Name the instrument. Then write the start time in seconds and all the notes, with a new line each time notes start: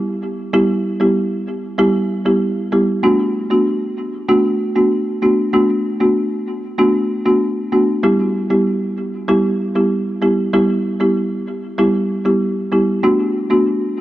marimba
0.53 G3 B3 E4 G4
1.00 G3 B3 E4 G4
1.78 G3 B3 E4 G4
2.25 G3 B3 E4 G4
2.72 G3 B3 E4 G4
3.03 A3 B3 D4 F#4
3.50 A3 B3 D4 F#4
4.28 A3 B3 D4 F#4
4.75 A3 B3 D4 F#4
5.22 A3 B3 D4 F#4
5.53 A3 B3 D4 F#4
6.00 A3 B3 D4 F#4
6.78 A3 B3 D4 F#4
7.25 A3 B3 D4 F#4
7.72 A3 B3 D4 F#4
8.03 G3 B3 E4 G4
8.50 G3 B3 E4 G4
9.28 G3 B3 E4 G4
9.75 G3 B3 E4 G4
10.22 G3 B3 E4 G4
10.53 G3 B3 E4 G4
11.00 G3 B3 E4 G4
11.78 G3 B3 E4 G4
12.25 G3 B3 E4 G4
12.72 G3 B3 E4 G4
13.03 A3 B3 D4 F#4
13.50 A3 B3 D4 F#4